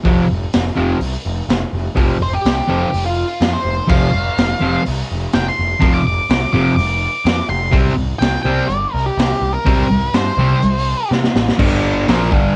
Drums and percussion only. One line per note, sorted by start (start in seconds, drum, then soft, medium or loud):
0.05 kick loud
0.05 open hi-hat medium
0.53 snare loud
0.53 open hi-hat medium
1.01 open hi-hat medium
1.50 snare loud
1.50 open hi-hat medium
1.97 kick loud
1.97 open hi-hat medium
2.46 snare loud
2.46 open hi-hat medium
2.94 open hi-hat medium
3.41 snare loud
3.41 open hi-hat medium
3.89 kick loud
3.89 crash medium
4.38 snare loud
4.38 open hi-hat medium
4.86 open hi-hat medium
5.32 snare loud
5.32 open hi-hat medium
5.82 kick loud
5.82 open hi-hat medium
6.30 snare loud
6.30 open hi-hat medium
6.79 open hi-hat medium
7.26 snare loud
7.26 open hi-hat medium
7.73 kick loud
7.73 open hi-hat medium
8.21 snare loud
8.21 open hi-hat medium
8.70 open hi-hat medium
9.19 snare loud
9.19 open hi-hat medium
9.66 kick loud
9.66 open hi-hat medium
10.13 snare loud
10.13 open hi-hat medium
10.62 open hi-hat medium
11.12 snare medium
11.24 snare medium
11.36 snare loud
11.48 snare medium
11.59 kick loud
11.59 crash loud
12.08 snare loud
12.08 open hi-hat medium
12.32 kick loud